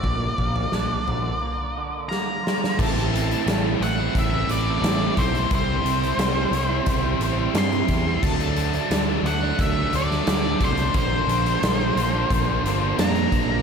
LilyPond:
<<
  \new Staff \with { instrumentName = "Lead electric guitar" } { \time 4/4 \key a \dorian \tempo 4 = 88 d''2. bes''4 | a''4. fis''8 e''8 d''4 c''8 | c''2. c'''4 | a''4. fis''8 e''8 d''4 c''8 |
c''2. bes''4 | }
  \new Staff \with { instrumentName = "Clean electric guitar" } { \time 4/4 \key a \dorian bes,8 bes8 d'8 d8 bes8 d8 bes8 f'8 | r1 | r1 | r1 |
r1 | }
  \new Staff \with { instrumentName = "Distorted electric guitar" } { \time 4/4 \key a \dorian r1 | <a, e a c' e'>8 <e a c' e'>16 <a c' e'>8. <e a c' e'>16 <a c' e'>16 <a, e a c' e'>16 <a c' e'>16 <e a c' e'>16 <a c' e'>16 <a, e a c' e'>8 <e a c' e'>16 <a c' e'>16 | <c g c' e'>8 <c g c' e'>16 <g c' e'>8. <c g c' e'>16 <g c' e'>16 <c g c' e'>16 <g c' e'>16 <c g c' e'>16 <g c' e'>16 <c g c' e'>8 <c g c' e'>16 <g c' e'>16 | <d fis a d'>8 <d fis a d'>16 <fis a d'>8. <d fis a d'>16 <fis a d'>16 <d fis a d'>16 <fis a d'>16 <d fis a d'>16 <fis a d'>16 <d fis a d'>8 <d fis a d'>16 <fis a d'>16 |
<bes, d f bes d'>8 <d f bes d'>16 <f bes d'>8. <d f bes d'>16 <f bes d'>16 <bes, d f bes d'>16 <f bes d'>16 <d f bes d'>16 <f bes d'>16 <bes, d f bes d'>8 <d f bes d'>16 <f bes d'>16 | }
  \new Staff \with { instrumentName = "Overdriven electric guitar" } { \time 4/4 \key a \dorian r1 | <a, e a c' e'>16 <a c' e'>8. <a, e a c' e'>16 <a c' e'>8 <a c' e'>8 <a c' e'>16 <e a c' e'>8 <a, e a c' e'>16 <a c' e'>16 <e a c' e'>16 <a c' e'>16 | <c g c' e'>16 <g c' e'>8. <c g c' e'>16 <g c' e'>8 <g c' e'>8 <g c' e'>16 <c g c' e'>8 <c g c' e'>16 <g c' e'>16 <c g c' e'>16 <g c' e'>16 | <d fis a d'>16 <fis a d'>8. <d fis a d'>16 <fis a d'>8 <fis a d'>8 <fis a d'>16 <d fis a d'>8 <d fis a d'>16 <fis a d'>16 <d fis a d'>16 <fis a d'>16 |
<bes, d f bes d'>16 <f bes d'>8. <bes, d f bes d'>16 <f bes d'>8 <f bes d'>8 <f bes d'>16 <d f bes d'>8 <bes, d f bes d'>16 <f bes d'>16 <d f bes d'>16 <f bes d'>16 | }
  \new Staff \with { instrumentName = "Fingered electric bass" } { \clef bass \time 4/4 \key a \dorian bes,,8 bes,,8 bes,,8 bes,,8 r2 | a,,4 a,,8 a,,8 a,,8 a,,8 a,,8 b,,8 | c,8 c,8 c,8 c,8 c,8 a,,8 g,8 e,8 | d,4 d,8 d,8 d,8 d,8 d,8 c,8 |
bes,,8 bes,,8 bes,,8 bes,,8 bes,,8 g,,8 f,8 bes,,8 | }
  \new DrumStaff \with { instrumentName = "Drums" } \drummode { \time 4/4 <bd tomfh>8 bd16 tomfh16 sn8 tomfh8 r4 sn8 sn16 sn16 | <cymc bd>16 hh16 hh16 hh16 <hh sn>8 hh8 <hh bd>8 hh8 <hh sn>8 <hh bd>16 hh16 | <hh bd>8 hh16 hh16 <hh sn>8 hh8 <hh bd>8 hh8 <hh sn>16 hh16 <hh bd>8 | <cymc bd>16 hh16 hh16 hh16 <hh sn>8 hh8 <hh bd>8 hh16 sn16 <hh sn>8 <hh bd>16 hh16 |
<hh bd>8 hh16 hh16 <hh sn>8 hh8 <hh bd>8 hh8 <hh sn>16 hh16 <hh bd>8 | }
>>